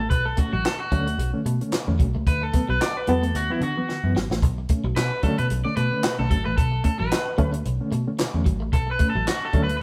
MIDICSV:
0, 0, Header, 1, 8, 480
1, 0, Start_track
1, 0, Tempo, 538600
1, 99, Time_signature, 4, 2, 24, 8
1, 8756, End_track
2, 0, Start_track
2, 0, Title_t, "Clean electric guitar"
2, 0, Program_c, 0, 27
2, 89, Note_on_c, 0, 71, 106
2, 226, Note_off_c, 0, 71, 0
2, 226, Note_on_c, 0, 69, 103
2, 340, Note_off_c, 0, 69, 0
2, 340, Note_on_c, 0, 66, 99
2, 463, Note_off_c, 0, 66, 0
2, 474, Note_on_c, 0, 66, 94
2, 583, Note_off_c, 0, 66, 0
2, 588, Note_on_c, 0, 69, 107
2, 710, Note_off_c, 0, 69, 0
2, 714, Note_on_c, 0, 66, 86
2, 1161, Note_off_c, 0, 66, 0
2, 2027, Note_on_c, 0, 71, 101
2, 2166, Note_off_c, 0, 71, 0
2, 2166, Note_on_c, 0, 69, 87
2, 2402, Note_off_c, 0, 69, 0
2, 2406, Note_on_c, 0, 71, 99
2, 2507, Note_off_c, 0, 71, 0
2, 2511, Note_on_c, 0, 74, 107
2, 2647, Note_off_c, 0, 74, 0
2, 2647, Note_on_c, 0, 71, 95
2, 2747, Note_off_c, 0, 71, 0
2, 2747, Note_on_c, 0, 69, 89
2, 2991, Note_off_c, 0, 69, 0
2, 2995, Note_on_c, 0, 66, 96
2, 3133, Note_off_c, 0, 66, 0
2, 3133, Note_on_c, 0, 64, 80
2, 3232, Note_off_c, 0, 64, 0
2, 3237, Note_on_c, 0, 66, 81
2, 3676, Note_off_c, 0, 66, 0
2, 4423, Note_on_c, 0, 71, 97
2, 4663, Note_off_c, 0, 71, 0
2, 4666, Note_on_c, 0, 69, 81
2, 4796, Note_off_c, 0, 69, 0
2, 4800, Note_on_c, 0, 71, 91
2, 4864, Note_off_c, 0, 71, 0
2, 5031, Note_on_c, 0, 74, 100
2, 5134, Note_off_c, 0, 74, 0
2, 5138, Note_on_c, 0, 71, 106
2, 5513, Note_off_c, 0, 71, 0
2, 5517, Note_on_c, 0, 69, 84
2, 5610, Note_off_c, 0, 69, 0
2, 5621, Note_on_c, 0, 69, 86
2, 5748, Note_off_c, 0, 69, 0
2, 5752, Note_on_c, 0, 71, 83
2, 5851, Note_off_c, 0, 71, 0
2, 5858, Note_on_c, 0, 69, 99
2, 6092, Note_off_c, 0, 69, 0
2, 6102, Note_on_c, 0, 69, 83
2, 6231, Note_off_c, 0, 69, 0
2, 6235, Note_on_c, 0, 71, 81
2, 6681, Note_off_c, 0, 71, 0
2, 7782, Note_on_c, 0, 69, 91
2, 7939, Note_off_c, 0, 69, 0
2, 7942, Note_on_c, 0, 71, 94
2, 8103, Note_off_c, 0, 71, 0
2, 8107, Note_on_c, 0, 69, 83
2, 8252, Note_off_c, 0, 69, 0
2, 8263, Note_on_c, 0, 66, 104
2, 8420, Note_on_c, 0, 69, 92
2, 8426, Note_off_c, 0, 66, 0
2, 8583, Note_off_c, 0, 69, 0
2, 8587, Note_on_c, 0, 71, 88
2, 8696, Note_off_c, 0, 71, 0
2, 8707, Note_on_c, 0, 71, 65
2, 8741, Note_off_c, 0, 71, 0
2, 8756, End_track
3, 0, Start_track
3, 0, Title_t, "Clean electric guitar"
3, 0, Program_c, 1, 27
3, 330, Note_on_c, 1, 57, 80
3, 441, Note_off_c, 1, 57, 0
3, 469, Note_on_c, 1, 54, 89
3, 555, Note_off_c, 1, 54, 0
3, 816, Note_on_c, 1, 54, 76
3, 924, Note_off_c, 1, 54, 0
3, 952, Note_on_c, 1, 57, 75
3, 1036, Note_off_c, 1, 57, 0
3, 1302, Note_on_c, 1, 57, 97
3, 1408, Note_off_c, 1, 57, 0
3, 1775, Note_on_c, 1, 54, 70
3, 1883, Note_off_c, 1, 54, 0
3, 1913, Note_on_c, 1, 57, 72
3, 1998, Note_off_c, 1, 57, 0
3, 2259, Note_on_c, 1, 57, 77
3, 2366, Note_off_c, 1, 57, 0
3, 2393, Note_on_c, 1, 54, 79
3, 2477, Note_off_c, 1, 54, 0
3, 2738, Note_on_c, 1, 54, 72
3, 2845, Note_off_c, 1, 54, 0
3, 2878, Note_on_c, 1, 57, 76
3, 2961, Note_off_c, 1, 57, 0
3, 3227, Note_on_c, 1, 59, 82
3, 3331, Note_off_c, 1, 59, 0
3, 3707, Note_on_c, 1, 54, 75
3, 3811, Note_off_c, 1, 54, 0
3, 3843, Note_on_c, 1, 57, 78
3, 3923, Note_off_c, 1, 57, 0
3, 4188, Note_on_c, 1, 57, 71
3, 4292, Note_off_c, 1, 57, 0
3, 4319, Note_on_c, 1, 54, 90
3, 4401, Note_off_c, 1, 54, 0
3, 4663, Note_on_c, 1, 54, 74
3, 4769, Note_off_c, 1, 54, 0
3, 4796, Note_on_c, 1, 57, 80
3, 4879, Note_off_c, 1, 57, 0
3, 5140, Note_on_c, 1, 57, 91
3, 5247, Note_off_c, 1, 57, 0
3, 5614, Note_on_c, 1, 54, 72
3, 5723, Note_off_c, 1, 54, 0
3, 5753, Note_on_c, 1, 57, 73
3, 5837, Note_off_c, 1, 57, 0
3, 6097, Note_on_c, 1, 57, 70
3, 6205, Note_off_c, 1, 57, 0
3, 6232, Note_on_c, 1, 54, 78
3, 6317, Note_off_c, 1, 54, 0
3, 6577, Note_on_c, 1, 54, 84
3, 6684, Note_off_c, 1, 54, 0
3, 6707, Note_on_c, 1, 57, 75
3, 6793, Note_off_c, 1, 57, 0
3, 7055, Note_on_c, 1, 57, 93
3, 7163, Note_off_c, 1, 57, 0
3, 7534, Note_on_c, 1, 54, 73
3, 7643, Note_off_c, 1, 54, 0
3, 7665, Note_on_c, 1, 57, 77
3, 7753, Note_off_c, 1, 57, 0
3, 8013, Note_on_c, 1, 57, 80
3, 8123, Note_off_c, 1, 57, 0
3, 8156, Note_on_c, 1, 54, 80
3, 8239, Note_off_c, 1, 54, 0
3, 8502, Note_on_c, 1, 54, 85
3, 8608, Note_off_c, 1, 54, 0
3, 8630, Note_on_c, 1, 57, 86
3, 8716, Note_off_c, 1, 57, 0
3, 8756, End_track
4, 0, Start_track
4, 0, Title_t, "Reed electric piano"
4, 0, Program_c, 2, 4
4, 98, Note_on_c, 2, 47, 60
4, 231, Note_off_c, 2, 47, 0
4, 339, Note_on_c, 2, 57, 67
4, 343, Note_on_c, 2, 61, 72
4, 471, Note_off_c, 2, 57, 0
4, 473, Note_off_c, 2, 61, 0
4, 816, Note_on_c, 2, 50, 109
4, 819, Note_on_c, 2, 57, 98
4, 822, Note_on_c, 2, 61, 120
4, 950, Note_off_c, 2, 50, 0
4, 951, Note_off_c, 2, 57, 0
4, 953, Note_off_c, 2, 61, 0
4, 1189, Note_on_c, 2, 50, 78
4, 1191, Note_on_c, 2, 57, 72
4, 1194, Note_on_c, 2, 61, 88
4, 1295, Note_off_c, 2, 50, 0
4, 1297, Note_off_c, 2, 57, 0
4, 1298, Note_off_c, 2, 61, 0
4, 1299, Note_on_c, 2, 47, 53
4, 1432, Note_off_c, 2, 47, 0
4, 1435, Note_on_c, 2, 50, 68
4, 1437, Note_on_c, 2, 57, 68
4, 1440, Note_on_c, 2, 61, 84
4, 1539, Note_off_c, 2, 50, 0
4, 1540, Note_off_c, 2, 57, 0
4, 1541, Note_off_c, 2, 61, 0
4, 1541, Note_on_c, 2, 47, 60
4, 1670, Note_on_c, 2, 50, 74
4, 1673, Note_off_c, 2, 47, 0
4, 1673, Note_on_c, 2, 57, 73
4, 1675, Note_on_c, 2, 61, 92
4, 1774, Note_off_c, 2, 57, 0
4, 1774, Note_off_c, 2, 61, 0
4, 1776, Note_off_c, 2, 50, 0
4, 1785, Note_on_c, 2, 57, 38
4, 1785, Note_on_c, 2, 61, 46
4, 1836, Note_off_c, 2, 57, 0
4, 1836, Note_off_c, 2, 61, 0
4, 2025, Note_on_c, 2, 50, 66
4, 2155, Note_off_c, 2, 50, 0
4, 2264, Note_on_c, 2, 54, 61
4, 2270, Note_on_c, 2, 59, 79
4, 2394, Note_off_c, 2, 54, 0
4, 2398, Note_off_c, 2, 59, 0
4, 2744, Note_on_c, 2, 52, 100
4, 2745, Note_on_c, 2, 54, 92
4, 2751, Note_on_c, 2, 59, 121
4, 2874, Note_off_c, 2, 52, 0
4, 2875, Note_off_c, 2, 54, 0
4, 2878, Note_off_c, 2, 59, 0
4, 3117, Note_on_c, 2, 52, 73
4, 3119, Note_on_c, 2, 54, 70
4, 3122, Note_on_c, 2, 59, 87
4, 3220, Note_off_c, 2, 52, 0
4, 3221, Note_off_c, 2, 54, 0
4, 3222, Note_off_c, 2, 59, 0
4, 3227, Note_on_c, 2, 50, 58
4, 3356, Note_off_c, 2, 50, 0
4, 3356, Note_on_c, 2, 52, 64
4, 3360, Note_on_c, 2, 54, 63
4, 3363, Note_on_c, 2, 59, 76
4, 3459, Note_off_c, 2, 52, 0
4, 3461, Note_off_c, 2, 54, 0
4, 3463, Note_off_c, 2, 59, 0
4, 3464, Note_on_c, 2, 50, 55
4, 3594, Note_off_c, 2, 50, 0
4, 3599, Note_on_c, 2, 52, 77
4, 3601, Note_on_c, 2, 54, 71
4, 3605, Note_on_c, 2, 59, 77
4, 3696, Note_off_c, 2, 59, 0
4, 3697, Note_off_c, 2, 54, 0
4, 3701, Note_off_c, 2, 52, 0
4, 3706, Note_on_c, 2, 59, 45
4, 3707, Note_on_c, 2, 54, 43
4, 3757, Note_off_c, 2, 54, 0
4, 3757, Note_off_c, 2, 59, 0
4, 3947, Note_on_c, 2, 47, 63
4, 4076, Note_off_c, 2, 47, 0
4, 4186, Note_on_c, 2, 57, 63
4, 4190, Note_on_c, 2, 61, 72
4, 4315, Note_off_c, 2, 57, 0
4, 4317, Note_off_c, 2, 61, 0
4, 4660, Note_on_c, 2, 50, 113
4, 4663, Note_on_c, 2, 57, 98
4, 4665, Note_on_c, 2, 61, 117
4, 4792, Note_off_c, 2, 50, 0
4, 4794, Note_off_c, 2, 57, 0
4, 4795, Note_off_c, 2, 61, 0
4, 5033, Note_on_c, 2, 50, 77
4, 5036, Note_on_c, 2, 57, 71
4, 5039, Note_on_c, 2, 61, 77
4, 5138, Note_off_c, 2, 50, 0
4, 5139, Note_off_c, 2, 57, 0
4, 5140, Note_off_c, 2, 61, 0
4, 5144, Note_on_c, 2, 47, 60
4, 5274, Note_off_c, 2, 47, 0
4, 5274, Note_on_c, 2, 50, 80
4, 5277, Note_on_c, 2, 57, 64
4, 5278, Note_on_c, 2, 61, 81
4, 5378, Note_off_c, 2, 50, 0
4, 5379, Note_off_c, 2, 57, 0
4, 5380, Note_off_c, 2, 61, 0
4, 5381, Note_on_c, 2, 47, 64
4, 5512, Note_off_c, 2, 47, 0
4, 5515, Note_on_c, 2, 50, 83
4, 5517, Note_on_c, 2, 57, 75
4, 5520, Note_on_c, 2, 61, 83
4, 5609, Note_off_c, 2, 57, 0
4, 5611, Note_off_c, 2, 61, 0
4, 5618, Note_off_c, 2, 50, 0
4, 5620, Note_on_c, 2, 57, 43
4, 5621, Note_on_c, 2, 61, 49
4, 5674, Note_off_c, 2, 57, 0
4, 5674, Note_off_c, 2, 61, 0
4, 5864, Note_on_c, 2, 47, 60
4, 5994, Note_off_c, 2, 47, 0
4, 6097, Note_on_c, 2, 57, 65
4, 6100, Note_on_c, 2, 61, 74
4, 6230, Note_off_c, 2, 57, 0
4, 6232, Note_off_c, 2, 61, 0
4, 6576, Note_on_c, 2, 50, 103
4, 6579, Note_on_c, 2, 57, 101
4, 6582, Note_on_c, 2, 61, 127
4, 6710, Note_off_c, 2, 50, 0
4, 6712, Note_off_c, 2, 57, 0
4, 6713, Note_off_c, 2, 61, 0
4, 6956, Note_on_c, 2, 50, 79
4, 6957, Note_on_c, 2, 57, 74
4, 6961, Note_on_c, 2, 61, 83
4, 7059, Note_off_c, 2, 50, 0
4, 7059, Note_off_c, 2, 57, 0
4, 7061, Note_off_c, 2, 61, 0
4, 7064, Note_on_c, 2, 47, 57
4, 7194, Note_off_c, 2, 47, 0
4, 7194, Note_on_c, 2, 50, 72
4, 7195, Note_on_c, 2, 57, 68
4, 7199, Note_on_c, 2, 61, 81
4, 7298, Note_off_c, 2, 50, 0
4, 7298, Note_off_c, 2, 57, 0
4, 7300, Note_off_c, 2, 61, 0
4, 7304, Note_on_c, 2, 47, 56
4, 7434, Note_off_c, 2, 47, 0
4, 7434, Note_on_c, 2, 50, 74
4, 7438, Note_on_c, 2, 57, 73
4, 7440, Note_on_c, 2, 61, 90
4, 7533, Note_off_c, 2, 57, 0
4, 7534, Note_off_c, 2, 61, 0
4, 7538, Note_off_c, 2, 50, 0
4, 7544, Note_on_c, 2, 57, 45
4, 7545, Note_on_c, 2, 61, 45
4, 7596, Note_off_c, 2, 57, 0
4, 7596, Note_off_c, 2, 61, 0
4, 7780, Note_on_c, 2, 47, 66
4, 7912, Note_off_c, 2, 47, 0
4, 8018, Note_on_c, 2, 57, 62
4, 8025, Note_on_c, 2, 61, 77
4, 8151, Note_off_c, 2, 57, 0
4, 8155, Note_off_c, 2, 61, 0
4, 8498, Note_on_c, 2, 50, 108
4, 8502, Note_on_c, 2, 57, 100
4, 8504, Note_on_c, 2, 61, 119
4, 8631, Note_off_c, 2, 50, 0
4, 8633, Note_off_c, 2, 57, 0
4, 8634, Note_off_c, 2, 61, 0
4, 8756, End_track
5, 0, Start_track
5, 0, Title_t, "Picked electric bass"
5, 0, Program_c, 3, 34
5, 0, Note_on_c, 3, 33, 86
5, 97, Note_off_c, 3, 33, 0
5, 97, Note_on_c, 3, 35, 109
5, 302, Note_off_c, 3, 35, 0
5, 475, Note_on_c, 3, 33, 84
5, 564, Note_off_c, 3, 33, 0
5, 819, Note_on_c, 3, 38, 95
5, 1023, Note_off_c, 3, 38, 0
5, 1055, Note_on_c, 3, 35, 99
5, 1171, Note_off_c, 3, 35, 0
5, 1298, Note_on_c, 3, 47, 106
5, 1413, Note_off_c, 3, 47, 0
5, 1674, Note_on_c, 3, 40, 86
5, 1764, Note_off_c, 3, 40, 0
5, 1780, Note_on_c, 3, 35, 98
5, 1894, Note_off_c, 3, 35, 0
5, 1916, Note_on_c, 3, 37, 92
5, 2005, Note_off_c, 3, 37, 0
5, 2021, Note_on_c, 3, 38, 99
5, 2224, Note_off_c, 3, 38, 0
5, 2401, Note_on_c, 3, 35, 92
5, 2488, Note_off_c, 3, 35, 0
5, 2748, Note_on_c, 3, 40, 91
5, 2949, Note_off_c, 3, 40, 0
5, 2984, Note_on_c, 3, 38, 99
5, 3096, Note_off_c, 3, 38, 0
5, 3217, Note_on_c, 3, 50, 100
5, 3333, Note_off_c, 3, 50, 0
5, 3598, Note_on_c, 3, 42, 89
5, 3686, Note_off_c, 3, 42, 0
5, 3702, Note_on_c, 3, 32, 79
5, 3816, Note_off_c, 3, 32, 0
5, 3830, Note_on_c, 3, 33, 89
5, 3945, Note_off_c, 3, 33, 0
5, 3945, Note_on_c, 3, 35, 104
5, 4147, Note_off_c, 3, 35, 0
5, 4315, Note_on_c, 3, 35, 101
5, 4404, Note_off_c, 3, 35, 0
5, 4422, Note_on_c, 3, 47, 94
5, 4535, Note_off_c, 3, 47, 0
5, 4807, Note_on_c, 3, 47, 88
5, 4891, Note_off_c, 3, 47, 0
5, 4907, Note_on_c, 3, 35, 110
5, 5018, Note_off_c, 3, 35, 0
5, 5143, Note_on_c, 3, 47, 101
5, 5256, Note_off_c, 3, 47, 0
5, 5519, Note_on_c, 3, 35, 87
5, 5607, Note_off_c, 3, 35, 0
5, 5621, Note_on_c, 3, 32, 85
5, 5735, Note_off_c, 3, 32, 0
5, 5764, Note_on_c, 3, 33, 77
5, 5849, Note_off_c, 3, 33, 0
5, 5864, Note_on_c, 3, 35, 105
5, 6066, Note_off_c, 3, 35, 0
5, 6243, Note_on_c, 3, 33, 90
5, 6329, Note_off_c, 3, 33, 0
5, 6585, Note_on_c, 3, 38, 89
5, 6786, Note_off_c, 3, 38, 0
5, 6825, Note_on_c, 3, 35, 92
5, 6937, Note_off_c, 3, 35, 0
5, 7060, Note_on_c, 3, 47, 102
5, 7174, Note_off_c, 3, 47, 0
5, 7435, Note_on_c, 3, 40, 97
5, 7524, Note_off_c, 3, 40, 0
5, 7541, Note_on_c, 3, 32, 84
5, 7678, Note_off_c, 3, 32, 0
5, 7678, Note_on_c, 3, 33, 90
5, 7781, Note_off_c, 3, 33, 0
5, 7781, Note_on_c, 3, 35, 107
5, 7985, Note_off_c, 3, 35, 0
5, 8156, Note_on_c, 3, 33, 96
5, 8245, Note_off_c, 3, 33, 0
5, 8502, Note_on_c, 3, 38, 98
5, 8705, Note_off_c, 3, 38, 0
5, 8756, End_track
6, 0, Start_track
6, 0, Title_t, "Muted clean electric guitar strokes"
6, 226, Note_on_c, 9, 29, 45
6, 315, Note_off_c, 9, 29, 0
6, 579, Note_on_c, 9, 29, 46
6, 668, Note_off_c, 9, 29, 0
6, 1545, Note_on_c, 9, 29, 48
6, 1634, Note_off_c, 9, 29, 0
6, 2153, Note_on_c, 9, 29, 48
6, 2242, Note_off_c, 9, 29, 0
6, 2502, Note_on_c, 9, 29, 50
6, 2591, Note_off_c, 9, 29, 0
6, 3463, Note_on_c, 9, 29, 39
6, 3552, Note_off_c, 9, 29, 0
6, 4084, Note_on_c, 9, 29, 46
6, 4173, Note_off_c, 9, 29, 0
6, 4432, Note_on_c, 9, 29, 47
6, 4521, Note_off_c, 9, 29, 0
6, 5383, Note_on_c, 9, 29, 46
6, 5472, Note_off_c, 9, 29, 0
6, 5988, Note_on_c, 9, 29, 47
6, 6077, Note_off_c, 9, 29, 0
6, 6343, Note_on_c, 9, 29, 48
6, 6432, Note_off_c, 9, 29, 0
6, 7294, Note_on_c, 9, 29, 46
6, 7383, Note_off_c, 9, 29, 0
6, 7904, Note_on_c, 9, 29, 49
6, 7993, Note_off_c, 9, 29, 0
6, 8261, Note_on_c, 9, 29, 42
6, 8350, Note_off_c, 9, 29, 0
6, 8756, End_track
7, 0, Start_track
7, 0, Title_t, "Muted picked electric bass strokes"
7, 4667, Note_on_c, 9, 29, 48
7, 4756, Note_off_c, 9, 29, 0
7, 8756, End_track
8, 0, Start_track
8, 0, Title_t, "Drums"
8, 95, Note_on_c, 9, 36, 105
8, 96, Note_on_c, 9, 42, 88
8, 184, Note_off_c, 9, 36, 0
8, 185, Note_off_c, 9, 42, 0
8, 329, Note_on_c, 9, 42, 90
8, 338, Note_on_c, 9, 36, 95
8, 418, Note_off_c, 9, 42, 0
8, 428, Note_off_c, 9, 36, 0
8, 576, Note_on_c, 9, 42, 86
8, 585, Note_on_c, 9, 38, 103
8, 585, Note_on_c, 9, 39, 75
8, 665, Note_off_c, 9, 42, 0
8, 674, Note_off_c, 9, 38, 0
8, 674, Note_off_c, 9, 39, 0
8, 817, Note_on_c, 9, 42, 71
8, 819, Note_on_c, 9, 36, 78
8, 906, Note_off_c, 9, 42, 0
8, 908, Note_off_c, 9, 36, 0
8, 956, Note_on_c, 9, 42, 54
8, 1045, Note_off_c, 9, 42, 0
8, 1062, Note_on_c, 9, 42, 83
8, 1151, Note_off_c, 9, 42, 0
8, 1300, Note_on_c, 9, 42, 69
8, 1389, Note_off_c, 9, 42, 0
8, 1434, Note_on_c, 9, 42, 52
8, 1524, Note_off_c, 9, 42, 0
8, 1530, Note_on_c, 9, 42, 89
8, 1540, Note_on_c, 9, 38, 119
8, 1540, Note_on_c, 9, 39, 93
8, 1619, Note_off_c, 9, 42, 0
8, 1629, Note_off_c, 9, 38, 0
8, 1629, Note_off_c, 9, 39, 0
8, 1778, Note_on_c, 9, 42, 72
8, 1779, Note_on_c, 9, 36, 97
8, 1868, Note_off_c, 9, 36, 0
8, 1868, Note_off_c, 9, 42, 0
8, 2020, Note_on_c, 9, 36, 96
8, 2020, Note_on_c, 9, 42, 74
8, 2109, Note_off_c, 9, 36, 0
8, 2109, Note_off_c, 9, 42, 0
8, 2257, Note_on_c, 9, 42, 91
8, 2263, Note_on_c, 9, 36, 98
8, 2346, Note_off_c, 9, 42, 0
8, 2352, Note_off_c, 9, 36, 0
8, 2502, Note_on_c, 9, 42, 95
8, 2510, Note_on_c, 9, 38, 100
8, 2510, Note_on_c, 9, 39, 85
8, 2591, Note_off_c, 9, 42, 0
8, 2600, Note_off_c, 9, 38, 0
8, 2600, Note_off_c, 9, 39, 0
8, 2736, Note_on_c, 9, 42, 66
8, 2825, Note_off_c, 9, 42, 0
8, 2880, Note_on_c, 9, 42, 53
8, 2969, Note_off_c, 9, 42, 0
8, 2984, Note_on_c, 9, 42, 83
8, 3073, Note_off_c, 9, 42, 0
8, 3221, Note_on_c, 9, 42, 74
8, 3310, Note_off_c, 9, 42, 0
8, 3467, Note_on_c, 9, 38, 57
8, 3556, Note_off_c, 9, 38, 0
8, 3710, Note_on_c, 9, 38, 90
8, 3799, Note_off_c, 9, 38, 0
8, 3844, Note_on_c, 9, 38, 88
8, 3933, Note_off_c, 9, 38, 0
8, 3943, Note_on_c, 9, 36, 106
8, 3945, Note_on_c, 9, 42, 88
8, 4032, Note_off_c, 9, 36, 0
8, 4034, Note_off_c, 9, 42, 0
8, 4178, Note_on_c, 9, 42, 95
8, 4185, Note_on_c, 9, 36, 95
8, 4267, Note_off_c, 9, 42, 0
8, 4274, Note_off_c, 9, 36, 0
8, 4421, Note_on_c, 9, 42, 91
8, 4430, Note_on_c, 9, 38, 100
8, 4430, Note_on_c, 9, 39, 81
8, 4510, Note_off_c, 9, 42, 0
8, 4519, Note_off_c, 9, 38, 0
8, 4519, Note_off_c, 9, 39, 0
8, 4657, Note_on_c, 9, 42, 73
8, 4663, Note_on_c, 9, 36, 76
8, 4746, Note_off_c, 9, 42, 0
8, 4752, Note_off_c, 9, 36, 0
8, 4796, Note_on_c, 9, 42, 53
8, 4885, Note_off_c, 9, 42, 0
8, 4902, Note_on_c, 9, 42, 83
8, 4991, Note_off_c, 9, 42, 0
8, 5138, Note_on_c, 9, 42, 76
8, 5227, Note_off_c, 9, 42, 0
8, 5371, Note_on_c, 9, 42, 80
8, 5381, Note_on_c, 9, 38, 122
8, 5381, Note_on_c, 9, 39, 102
8, 5460, Note_off_c, 9, 42, 0
8, 5470, Note_off_c, 9, 38, 0
8, 5470, Note_off_c, 9, 39, 0
8, 5621, Note_on_c, 9, 36, 91
8, 5621, Note_on_c, 9, 42, 80
8, 5710, Note_off_c, 9, 36, 0
8, 5710, Note_off_c, 9, 42, 0
8, 5861, Note_on_c, 9, 36, 108
8, 5862, Note_on_c, 9, 42, 82
8, 5950, Note_off_c, 9, 36, 0
8, 5951, Note_off_c, 9, 42, 0
8, 6095, Note_on_c, 9, 42, 90
8, 6103, Note_on_c, 9, 36, 88
8, 6184, Note_off_c, 9, 42, 0
8, 6192, Note_off_c, 9, 36, 0
8, 6339, Note_on_c, 9, 42, 97
8, 6348, Note_on_c, 9, 38, 109
8, 6348, Note_on_c, 9, 39, 93
8, 6428, Note_off_c, 9, 42, 0
8, 6437, Note_off_c, 9, 38, 0
8, 6437, Note_off_c, 9, 39, 0
8, 6577, Note_on_c, 9, 42, 64
8, 6581, Note_on_c, 9, 36, 78
8, 6667, Note_off_c, 9, 42, 0
8, 6670, Note_off_c, 9, 36, 0
8, 6715, Note_on_c, 9, 42, 61
8, 6804, Note_off_c, 9, 42, 0
8, 6821, Note_on_c, 9, 42, 86
8, 6910, Note_off_c, 9, 42, 0
8, 7059, Note_on_c, 9, 42, 76
8, 7148, Note_off_c, 9, 42, 0
8, 7293, Note_on_c, 9, 42, 90
8, 7303, Note_on_c, 9, 38, 116
8, 7303, Note_on_c, 9, 39, 96
8, 7382, Note_off_c, 9, 42, 0
8, 7392, Note_off_c, 9, 38, 0
8, 7392, Note_off_c, 9, 39, 0
8, 7540, Note_on_c, 9, 36, 83
8, 7541, Note_on_c, 9, 42, 78
8, 7629, Note_off_c, 9, 36, 0
8, 7630, Note_off_c, 9, 42, 0
8, 7779, Note_on_c, 9, 36, 105
8, 7780, Note_on_c, 9, 42, 89
8, 7868, Note_off_c, 9, 36, 0
8, 7869, Note_off_c, 9, 42, 0
8, 8012, Note_on_c, 9, 42, 89
8, 8021, Note_on_c, 9, 36, 98
8, 8101, Note_off_c, 9, 42, 0
8, 8110, Note_off_c, 9, 36, 0
8, 8259, Note_on_c, 9, 42, 96
8, 8268, Note_on_c, 9, 38, 95
8, 8268, Note_on_c, 9, 39, 84
8, 8348, Note_off_c, 9, 42, 0
8, 8357, Note_off_c, 9, 38, 0
8, 8357, Note_off_c, 9, 39, 0
8, 8494, Note_on_c, 9, 42, 71
8, 8499, Note_on_c, 9, 36, 85
8, 8583, Note_off_c, 9, 42, 0
8, 8588, Note_off_c, 9, 36, 0
8, 8637, Note_on_c, 9, 42, 59
8, 8726, Note_off_c, 9, 42, 0
8, 8756, End_track
0, 0, End_of_file